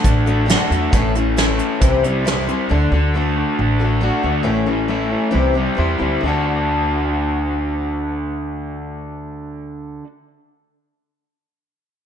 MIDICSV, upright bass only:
0, 0, Header, 1, 2, 480
1, 0, Start_track
1, 0, Key_signature, 2, "major"
1, 0, Tempo, 442478
1, 1007, Time_signature, 4, 2, 24, 8
1, 13077, End_track
2, 0, Start_track
2, 0, Title_t, "Upright bass"
2, 0, Program_c, 0, 32
2, 49, Note_on_c, 0, 33, 83
2, 589, Note_off_c, 0, 33, 0
2, 765, Note_on_c, 0, 40, 68
2, 946, Note_off_c, 0, 40, 0
2, 1006, Note_on_c, 0, 33, 73
2, 1727, Note_off_c, 0, 33, 0
2, 1968, Note_on_c, 0, 36, 82
2, 2688, Note_off_c, 0, 36, 0
2, 2937, Note_on_c, 0, 38, 79
2, 3113, Note_off_c, 0, 38, 0
2, 3165, Note_on_c, 0, 38, 88
2, 3706, Note_off_c, 0, 38, 0
2, 3894, Note_on_c, 0, 33, 88
2, 4432, Note_off_c, 0, 33, 0
2, 4597, Note_on_c, 0, 38, 66
2, 4780, Note_off_c, 0, 38, 0
2, 4843, Note_on_c, 0, 33, 73
2, 5566, Note_off_c, 0, 33, 0
2, 5794, Note_on_c, 0, 36, 75
2, 6159, Note_off_c, 0, 36, 0
2, 6274, Note_on_c, 0, 40, 57
2, 6495, Note_off_c, 0, 40, 0
2, 6520, Note_on_c, 0, 38, 58
2, 6738, Note_off_c, 0, 38, 0
2, 6757, Note_on_c, 0, 38, 66
2, 10830, Note_off_c, 0, 38, 0
2, 13077, End_track
0, 0, End_of_file